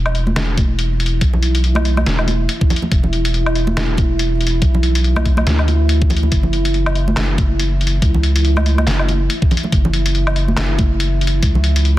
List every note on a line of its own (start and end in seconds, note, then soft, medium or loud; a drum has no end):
0.00 0.35 E1 medium
0.00 11.99 E4 medium
0.06 low woodblock medium
0.15 closed hi-hat soft
0.27 high conga medium
0.36 1.20 E1 loud
0.36 snare loud
0.36 closed hi-hat medium
0.36 low woodblock medium
0.57 kick loud
0.57 closed hi-hat medium
0.57 high conga medium
0.79 closed hi-hat medium
1.00 closed hi-hat soft
1.06 closed hi-hat medium
1.21 2.05 B1 medium
1.21 kick loud
1.21 closed hi-hat medium
1.33 low conga medium
1.43 closed hi-hat medium
1.55 closed hi-hat medium
1.64 closed hi-hat soft
1.75 high conga medium
1.75 low woodblock medium
1.85 closed hi-hat soft
1.97 high conga loud
1.97 low woodblock medium
2.06 2.47 E1 loud
2.06 snare loud
2.06 closed hi-hat medium
2.19 low woodblock soft
2.28 closed hi-hat soft
2.28 high conga medium
2.49 closed hi-hat medium
2.61 kick loud
2.70 closed hi-hat soft
2.70 low conga medium
2.76 closed hi-hat medium
2.82 high conga medium
2.82 low conga medium
2.92 3.75 E1 medium
2.92 kick loud
2.92 closed hi-hat medium
3.03 low conga medium
3.13 closed hi-hat soft
3.25 closed hi-hat medium
3.34 closed hi-hat soft
3.46 low woodblock medium
3.55 closed hi-hat soft
3.67 high conga loud
3.76 4.60 E1 loud
3.76 snare loud
3.76 closed hi-hat medium
3.76 low woodblock medium
3.97 kick loud
3.97 closed hi-hat soft
3.97 high conga medium
4.19 closed hi-hat medium
4.41 closed hi-hat soft
4.47 closed hi-hat medium
4.62 5.45 B1 medium
4.62 kick loud
4.62 closed hi-hat medium
4.75 low conga medium
4.83 closed hi-hat soft
4.95 closed hi-hat medium
5.04 closed hi-hat soft
5.16 high conga medium
5.16 low woodblock medium
5.26 kick medium
5.26 closed hi-hat soft
5.37 high conga medium
5.37 low woodblock medium
5.47 6.30 D2 medium
5.47 snare loud
5.47 closed hi-hat medium
5.59 low woodblock soft
5.68 closed hi-hat soft
5.68 high conga medium
5.89 closed hi-hat medium
6.02 kick loud
6.10 closed hi-hat soft
6.10 low conga medium
6.17 closed hi-hat medium
6.23 high conga medium
6.23 low conga medium
6.32 7.15 F#1 loud
6.32 kick loud
6.32 closed hi-hat medium
6.43 low conga medium
6.53 closed hi-hat soft
6.65 closed hi-hat medium
6.74 closed hi-hat soft
6.86 low woodblock medium
6.95 closed hi-hat soft
7.08 high conga loud
7.17 8.01 F#1 medium
7.17 snare loud
7.17 clap medium
7.17 closed hi-hat medium
7.17 low woodblock medium
7.38 kick loud
7.38 closed hi-hat soft
7.38 high conga medium
7.59 closed hi-hat medium
7.81 closed hi-hat soft
7.87 closed hi-hat medium
8.02 8.86 C#2 medium
8.02 kick loud
8.02 closed hi-hat medium
8.14 low conga medium
8.23 closed hi-hat soft
8.36 closed hi-hat medium
8.45 closed hi-hat soft
8.56 high conga medium
8.56 low woodblock medium
8.66 closed hi-hat soft
8.78 high conga medium
8.78 low woodblock medium
8.87 9.28 F#1 loud
8.87 snare loud
8.87 clap medium
8.87 closed hi-hat medium
8.99 low woodblock soft
9.09 closed hi-hat medium
9.09 high conga medium
9.30 closed hi-hat medium
9.42 kick loud
9.51 closed hi-hat soft
9.51 low conga medium
9.57 closed hi-hat medium
9.63 high conga medium
9.63 low conga medium
9.72 10.56 F#1 medium
9.72 kick loud
9.72 closed hi-hat medium
9.85 low conga medium
9.93 closed hi-hat medium
10.06 closed hi-hat medium
10.15 closed hi-hat soft
10.27 low woodblock medium
10.36 closed hi-hat medium
10.48 high conga medium
10.57 11.41 F#1 medium
10.57 snare loud
10.57 clap medium
10.57 closed hi-hat medium
10.57 low woodblock medium
10.78 kick loud
10.78 closed hi-hat medium
10.78 high conga medium
11.00 closed hi-hat medium
11.21 closed hi-hat soft
11.27 closed hi-hat medium
11.42 11.99 C#2 loud
11.42 kick loud
11.42 closed hi-hat medium
11.55 low conga medium
11.64 closed hi-hat medium
11.76 closed hi-hat medium
11.85 closed hi-hat soft